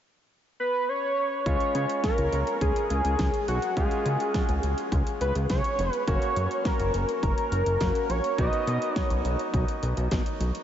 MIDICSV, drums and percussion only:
0, 0, Header, 1, 2, 480
1, 0, Start_track
1, 0, Tempo, 576923
1, 1216, Time_signature, 4, 2, 24, 8
1, 8847, End_track
2, 0, Start_track
2, 0, Title_t, "Drums"
2, 1216, Note_on_c, 9, 36, 112
2, 1216, Note_on_c, 9, 42, 68
2, 1299, Note_off_c, 9, 36, 0
2, 1299, Note_off_c, 9, 42, 0
2, 1335, Note_on_c, 9, 42, 42
2, 1418, Note_off_c, 9, 42, 0
2, 1456, Note_on_c, 9, 42, 75
2, 1539, Note_off_c, 9, 42, 0
2, 1576, Note_on_c, 9, 42, 49
2, 1660, Note_off_c, 9, 42, 0
2, 1695, Note_on_c, 9, 38, 100
2, 1695, Note_on_c, 9, 42, 71
2, 1696, Note_on_c, 9, 36, 107
2, 1778, Note_off_c, 9, 38, 0
2, 1778, Note_off_c, 9, 42, 0
2, 1779, Note_off_c, 9, 36, 0
2, 1814, Note_on_c, 9, 42, 51
2, 1897, Note_off_c, 9, 42, 0
2, 1935, Note_on_c, 9, 42, 72
2, 2018, Note_off_c, 9, 42, 0
2, 2055, Note_on_c, 9, 42, 44
2, 2138, Note_off_c, 9, 42, 0
2, 2174, Note_on_c, 9, 36, 99
2, 2175, Note_on_c, 9, 42, 74
2, 2258, Note_off_c, 9, 36, 0
2, 2258, Note_off_c, 9, 42, 0
2, 2297, Note_on_c, 9, 42, 52
2, 2380, Note_off_c, 9, 42, 0
2, 2416, Note_on_c, 9, 42, 79
2, 2499, Note_off_c, 9, 42, 0
2, 2535, Note_on_c, 9, 42, 51
2, 2618, Note_off_c, 9, 42, 0
2, 2653, Note_on_c, 9, 42, 67
2, 2655, Note_on_c, 9, 38, 107
2, 2658, Note_on_c, 9, 36, 105
2, 2737, Note_off_c, 9, 42, 0
2, 2739, Note_off_c, 9, 38, 0
2, 2741, Note_off_c, 9, 36, 0
2, 2776, Note_on_c, 9, 42, 48
2, 2859, Note_off_c, 9, 42, 0
2, 2896, Note_on_c, 9, 42, 57
2, 2979, Note_off_c, 9, 42, 0
2, 3015, Note_on_c, 9, 42, 49
2, 3098, Note_off_c, 9, 42, 0
2, 3135, Note_on_c, 9, 36, 114
2, 3135, Note_on_c, 9, 42, 71
2, 3218, Note_off_c, 9, 36, 0
2, 3219, Note_off_c, 9, 42, 0
2, 3255, Note_on_c, 9, 42, 41
2, 3338, Note_off_c, 9, 42, 0
2, 3375, Note_on_c, 9, 42, 77
2, 3458, Note_off_c, 9, 42, 0
2, 3496, Note_on_c, 9, 42, 50
2, 3579, Note_off_c, 9, 42, 0
2, 3614, Note_on_c, 9, 38, 99
2, 3614, Note_on_c, 9, 42, 72
2, 3615, Note_on_c, 9, 36, 106
2, 3697, Note_off_c, 9, 38, 0
2, 3697, Note_off_c, 9, 42, 0
2, 3698, Note_off_c, 9, 36, 0
2, 3733, Note_on_c, 9, 42, 50
2, 3816, Note_off_c, 9, 42, 0
2, 3854, Note_on_c, 9, 42, 68
2, 3938, Note_off_c, 9, 42, 0
2, 3975, Note_on_c, 9, 42, 44
2, 4058, Note_off_c, 9, 42, 0
2, 4094, Note_on_c, 9, 36, 105
2, 4094, Note_on_c, 9, 42, 75
2, 4177, Note_off_c, 9, 36, 0
2, 4178, Note_off_c, 9, 42, 0
2, 4216, Note_on_c, 9, 42, 51
2, 4299, Note_off_c, 9, 42, 0
2, 4335, Note_on_c, 9, 42, 78
2, 4419, Note_off_c, 9, 42, 0
2, 4455, Note_on_c, 9, 42, 54
2, 4538, Note_off_c, 9, 42, 0
2, 4573, Note_on_c, 9, 42, 70
2, 4575, Note_on_c, 9, 38, 106
2, 4577, Note_on_c, 9, 36, 108
2, 4656, Note_off_c, 9, 42, 0
2, 4658, Note_off_c, 9, 38, 0
2, 4661, Note_off_c, 9, 36, 0
2, 4696, Note_on_c, 9, 42, 47
2, 4779, Note_off_c, 9, 42, 0
2, 4817, Note_on_c, 9, 42, 58
2, 4900, Note_off_c, 9, 42, 0
2, 4935, Note_on_c, 9, 42, 51
2, 5018, Note_off_c, 9, 42, 0
2, 5055, Note_on_c, 9, 36, 109
2, 5055, Note_on_c, 9, 42, 70
2, 5138, Note_off_c, 9, 36, 0
2, 5139, Note_off_c, 9, 42, 0
2, 5174, Note_on_c, 9, 42, 43
2, 5258, Note_off_c, 9, 42, 0
2, 5295, Note_on_c, 9, 42, 79
2, 5378, Note_off_c, 9, 42, 0
2, 5416, Note_on_c, 9, 42, 50
2, 5499, Note_off_c, 9, 42, 0
2, 5535, Note_on_c, 9, 36, 111
2, 5535, Note_on_c, 9, 38, 100
2, 5535, Note_on_c, 9, 42, 71
2, 5618, Note_off_c, 9, 38, 0
2, 5618, Note_off_c, 9, 42, 0
2, 5619, Note_off_c, 9, 36, 0
2, 5654, Note_on_c, 9, 42, 51
2, 5737, Note_off_c, 9, 42, 0
2, 5775, Note_on_c, 9, 42, 73
2, 5858, Note_off_c, 9, 42, 0
2, 5896, Note_on_c, 9, 42, 45
2, 5979, Note_off_c, 9, 42, 0
2, 6015, Note_on_c, 9, 36, 104
2, 6016, Note_on_c, 9, 42, 73
2, 6098, Note_off_c, 9, 36, 0
2, 6099, Note_off_c, 9, 42, 0
2, 6138, Note_on_c, 9, 42, 50
2, 6221, Note_off_c, 9, 42, 0
2, 6257, Note_on_c, 9, 42, 80
2, 6340, Note_off_c, 9, 42, 0
2, 6376, Note_on_c, 9, 42, 52
2, 6459, Note_off_c, 9, 42, 0
2, 6494, Note_on_c, 9, 42, 70
2, 6496, Note_on_c, 9, 38, 107
2, 6498, Note_on_c, 9, 36, 110
2, 6577, Note_off_c, 9, 42, 0
2, 6579, Note_off_c, 9, 38, 0
2, 6581, Note_off_c, 9, 36, 0
2, 6617, Note_on_c, 9, 42, 49
2, 6700, Note_off_c, 9, 42, 0
2, 6738, Note_on_c, 9, 42, 58
2, 6821, Note_off_c, 9, 42, 0
2, 6856, Note_on_c, 9, 42, 50
2, 6939, Note_off_c, 9, 42, 0
2, 6976, Note_on_c, 9, 36, 111
2, 6976, Note_on_c, 9, 42, 71
2, 7059, Note_off_c, 9, 36, 0
2, 7060, Note_off_c, 9, 42, 0
2, 7096, Note_on_c, 9, 42, 42
2, 7179, Note_off_c, 9, 42, 0
2, 7217, Note_on_c, 9, 42, 77
2, 7300, Note_off_c, 9, 42, 0
2, 7337, Note_on_c, 9, 42, 50
2, 7421, Note_off_c, 9, 42, 0
2, 7456, Note_on_c, 9, 36, 104
2, 7456, Note_on_c, 9, 38, 96
2, 7456, Note_on_c, 9, 42, 70
2, 7539, Note_off_c, 9, 36, 0
2, 7539, Note_off_c, 9, 38, 0
2, 7539, Note_off_c, 9, 42, 0
2, 7574, Note_on_c, 9, 42, 51
2, 7658, Note_off_c, 9, 42, 0
2, 7696, Note_on_c, 9, 42, 68
2, 7779, Note_off_c, 9, 42, 0
2, 7816, Note_on_c, 9, 42, 44
2, 7899, Note_off_c, 9, 42, 0
2, 7935, Note_on_c, 9, 36, 102
2, 7935, Note_on_c, 9, 42, 75
2, 8018, Note_off_c, 9, 36, 0
2, 8019, Note_off_c, 9, 42, 0
2, 8058, Note_on_c, 9, 42, 51
2, 8141, Note_off_c, 9, 42, 0
2, 8177, Note_on_c, 9, 42, 75
2, 8260, Note_off_c, 9, 42, 0
2, 8296, Note_on_c, 9, 42, 53
2, 8379, Note_off_c, 9, 42, 0
2, 8414, Note_on_c, 9, 42, 69
2, 8416, Note_on_c, 9, 38, 110
2, 8418, Note_on_c, 9, 36, 107
2, 8498, Note_off_c, 9, 42, 0
2, 8500, Note_off_c, 9, 38, 0
2, 8501, Note_off_c, 9, 36, 0
2, 8537, Note_on_c, 9, 42, 47
2, 8620, Note_off_c, 9, 42, 0
2, 8658, Note_on_c, 9, 42, 57
2, 8741, Note_off_c, 9, 42, 0
2, 8776, Note_on_c, 9, 42, 51
2, 8847, Note_off_c, 9, 42, 0
2, 8847, End_track
0, 0, End_of_file